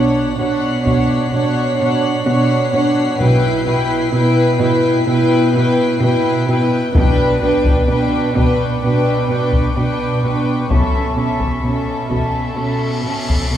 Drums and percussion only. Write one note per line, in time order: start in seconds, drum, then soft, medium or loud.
0.86 taiko soft
6.95 taiko medium
7.66 taiko medium
8.36 taiko medium
9.53 taiko medium
10.71 taiko medium
11.41 taiko medium
12.11 taiko medium
13.29 taiko medium